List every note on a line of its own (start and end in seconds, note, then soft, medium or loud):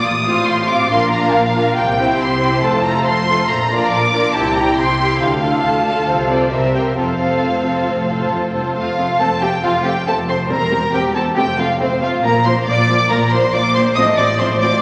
0.02 0.41 A1 medium
0.02 0.41 A2 soft
0.02 0.46 D#6 medium
0.24 0.67 C4 soft
0.24 0.67 F4 soft
0.24 0.68 F5 soft
0.45 0.85 A1 medium
0.45 0.84 A2 medium
0.45 0.68 C6 medium
0.68 0.89 C4 soft
0.68 0.88 F4 soft
0.68 0.90 F4 soft
0.68 0.90 F5 soft
0.68 0.90 D6 medium
0.89 1.28 A#1 medium
0.89 1.28 A#2 medium
0.89 1.10 D4 soft
0.89 1.10 F4 soft
0.89 1.12 A#4 soft
0.89 1.11 F5 soft
0.89 1.11 C6 medium
1.11 1.53 D4 soft
1.11 1.53 F4 soft
1.11 1.54 A#4 soft
1.11 1.54 F5 soft
1.11 1.33 A#5 medium
1.32 1.71 A#1 medium
1.32 1.71 A#2 soft
1.32 1.76 F5 medium
1.54 1.75 D4 soft
1.54 1.75 F4 soft
1.54 1.76 A#4 soft
1.54 1.76 F5 soft
1.75 2.14 C2 medium
1.75 2.14 C3 medium
1.75 2.19 G5 medium
1.97 2.40 C4 soft
1.97 2.40 E4 soft
1.97 2.41 G4 soft
1.97 2.41 C5 soft
2.18 2.58 C2 medium
2.18 2.57 C3 medium
2.18 2.63 C6 medium
2.41 2.62 C4 soft
2.41 2.62 E4 soft
2.41 2.63 G4 soft
2.41 2.62 C5 soft
2.62 3.01 F1 medium
2.62 3.00 F2 medium
2.62 2.83 A3 soft
2.62 2.83 F4 soft
2.62 2.84 A4 soft
2.62 2.84 C5 soft
2.62 2.85 A5 medium
2.84 3.27 A3 soft
2.84 3.27 F4 soft
2.84 3.27 A4 soft
2.84 3.27 C5 soft
2.84 3.05 A#5 medium
3.04 3.44 F1 medium
3.04 3.43 F2 medium
3.04 3.48 C6 medium
3.28 3.49 A3 soft
3.28 3.49 F4 soft
3.28 3.49 A4 soft
3.28 3.49 C5 soft
3.48 3.87 A#1 medium
3.48 3.87 A#2 medium
3.48 3.92 A#5 medium
3.70 4.12 D4 soft
3.70 4.12 F4 soft
3.70 4.12 A#4 soft
3.70 4.13 D5 soft
3.91 4.29 A#1 medium
3.91 4.29 A#2 medium
3.91 4.34 D6 medium
4.13 4.35 D4 soft
4.13 4.35 F4 soft
4.13 4.34 A#4 soft
4.13 4.35 D5 soft
4.33 4.73 C2 medium
4.33 4.72 C3 medium
4.33 4.55 C4 soft
4.33 4.55 E4 soft
4.33 4.55 G4 soft
4.33 4.55 G5 soft
4.33 4.56 A5 medium
4.55 4.99 C4 soft
4.55 4.98 E4 soft
4.55 4.99 G4 soft
4.55 4.99 G5 soft
4.55 4.77 A#5 medium
4.77 5.16 C2 medium
4.77 5.16 C3 medium
4.77 5.20 C6 medium
5.00 5.21 C4 soft
5.00 5.21 E4 soft
5.00 5.21 G4 soft
5.00 5.21 G5 soft
5.20 5.60 D2 medium
5.20 5.59 D3 medium
5.20 5.65 F5 medium
5.43 5.85 A3 soft
5.43 5.85 F4 soft
5.43 5.86 A4 soft
5.43 5.86 F5 soft
5.64 6.03 D2 soft
5.64 6.03 D3 soft
5.64 6.08 A5 medium
5.86 6.08 A3 soft
5.86 6.07 F4 soft
5.86 6.07 A4 soft
5.86 6.08 F5 soft
6.07 6.47 C2 soft
6.07 6.47 C3 soft
6.07 6.29 C4 soft
6.07 6.29 F4 soft
6.07 6.29 A4 soft
6.07 6.29 C5 soft
6.07 6.30 F5 medium
6.30 6.51 C4 soft
6.30 6.52 F4 soft
6.30 6.52 A4 soft
6.30 6.51 C5 soft
6.30 6.52 D5 soft
6.52 6.92 C2 soft
6.52 6.92 C3 soft
6.52 6.73 C4 soft
6.52 6.73 G4 soft
6.52 6.73 A#4 soft
6.52 6.74 C5 soft
6.52 6.74 E5 medium
6.74 6.95 C4 soft
6.74 6.96 G4 soft
6.74 6.96 A#4 soft
6.74 6.95 C5 soft
6.74 6.83 G5 soft
6.96 7.37 F1 soft
6.96 7.37 F2 soft
6.96 7.19 C4 soft
6.96 7.18 F4 soft
6.96 7.18 A4 soft
6.96 7.19 C5 soft
6.96 8.28 F5 medium
7.20 7.63 C4 soft
7.20 7.63 F4 soft
7.20 7.63 A4 soft
7.20 7.64 C5 soft
7.42 7.81 F1 soft
7.42 7.84 F2 soft
7.64 8.08 C4 soft
7.64 8.08 F4 soft
7.64 8.07 A4 soft
7.64 8.07 C5 soft
7.87 8.26 F1 soft
7.87 8.31 A2 soft
8.08 8.52 C4 soft
8.08 8.52 F4 soft
8.08 8.52 A4 soft
8.08 8.52 C5 soft
8.32 8.71 F1 soft
8.32 8.40 F2 soft
8.53 8.62 G2 soft
8.53 8.74 C4 soft
8.53 8.75 F4 soft
8.53 8.75 A4 soft
8.53 8.75 C5 soft
8.75 9.14 F1 medium
8.75 9.14 F2 medium
8.75 8.84 A3 soft
8.75 8.84 C4 soft
8.75 9.16 F4 soft
8.75 9.17 F5 medium
8.98 9.06 A3 soft
8.98 9.06 C4 soft
9.19 9.58 F1 soft
9.19 9.59 F2 soft
9.19 9.27 A3 soft
9.19 9.28 C4 soft
9.19 9.27 A4 medium
9.19 9.42 A5 medium
9.41 9.50 A3 soft
9.41 9.50 C4 soft
9.41 9.49 G4 soft
9.41 9.63 G5 medium
9.63 10.02 F1 soft
9.63 10.02 F2 medium
9.63 9.71 A3 soft
9.63 9.71 C4 soft
9.63 9.85 F4 medium
9.63 9.86 F5 medium
9.83 9.93 A3 soft
9.83 9.93 C4 soft
9.83 9.91 G4 soft
9.83 10.07 G5 medium
10.06 10.46 F1 soft
10.06 10.46 F2 medium
10.06 10.14 A3 soft
10.06 10.14 C4 soft
10.06 10.14 A4 medium
10.06 10.15 A5 medium
10.27 10.35 A3 soft
10.27 10.35 C4 soft
10.27 10.50 C5 soft
10.27 10.37 C6 medium
10.49 10.89 E1 soft
10.49 10.89 E2 medium
10.49 10.57 G3 soft
10.49 10.57 C4 soft
10.49 10.92 A#4 medium
10.49 10.93 A#5 medium
10.71 10.79 G3 soft
10.71 10.79 C4 soft
10.92 11.33 E1 soft
10.92 11.32 E2 medium
10.92 11.01 G3 soft
10.92 11.01 C4 soft
10.92 11.15 G4 medium
10.92 11.02 G5 medium
11.15 11.24 G3 soft
11.15 11.23 C4 soft
11.15 11.23 A4 medium
11.15 11.24 A5 medium
11.36 11.76 F1 medium
11.36 11.75 F2 medium
11.36 11.45 A3 soft
11.36 11.45 C4 soft
11.36 11.44 G4 medium
11.36 11.58 G5 medium
11.58 11.67 A3 soft
11.58 11.67 C4 soft
11.58 11.66 F4 soft
11.58 11.80 F5 medium
11.80 12.19 F1 soft
11.80 12.19 F2 medium
11.80 11.88 A3 soft
11.80 11.88 C4 medium
11.80 11.89 C4 soft
11.80 12.02 C5 medium
12.02 12.10 A3 soft
12.02 12.10 C4 soft
12.02 12.24 F4 soft
12.02 12.10 F5 medium
12.23 12.62 A#1 medium
12.23 12.62 A#2 medium
12.23 12.32 F3 soft
12.23 12.32 A#3 soft
12.23 12.33 A#4 medium
12.23 12.45 A#5 medium
12.45 12.53 F3 soft
12.45 12.53 A#3 soft
12.45 12.54 C5 medium
12.45 12.53 C6 medium
12.66 13.05 A#1 medium
12.66 13.05 A#2 medium
12.66 12.76 F3 soft
12.66 12.75 A#3 soft
12.66 13.09 D5 medium
12.66 13.09 D6 medium
12.90 12.98 F3 soft
12.90 12.98 A#3 soft
13.10 13.48 A#1 medium
13.10 13.48 A#2 medium
13.10 13.18 F3 medium
13.10 13.18 A#3 soft
13.10 13.18 A#4 medium
13.10 13.32 A#5 medium
13.31 13.40 F3 soft
13.31 13.41 A#3 soft
13.31 13.53 C5 medium
13.31 13.53 C6 medium
13.53 13.92 A#1 medium
13.53 13.91 A#2 medium
13.53 13.62 F3 soft
13.53 13.62 A#3 soft
13.53 13.61 D5 medium
13.53 13.75 D6 medium
13.75 13.83 F3 soft
13.75 13.84 A#3 soft
13.75 13.96 C5 medium
13.75 13.83 C6 medium
13.95 14.35 A1 medium
13.95 14.34 A2 medium
13.95 14.05 F3 soft
13.95 14.05 C4 soft
13.95 14.18 D#5 medium
13.95 14.03 D#6 medium
14.18 14.26 F3 soft
14.18 14.27 C4 soft
14.18 14.40 D5 medium
14.18 14.26 D6 medium
14.39 14.79 A1 medium
14.39 14.78 A2 medium
14.39 14.48 F3 soft
14.39 14.49 C4 soft
14.39 14.62 C5 medium
14.39 14.47 C6 medium
14.61 14.70 F3 soft
14.61 14.70 C4 soft
14.61 14.82 D5 medium
14.61 14.82 D6 medium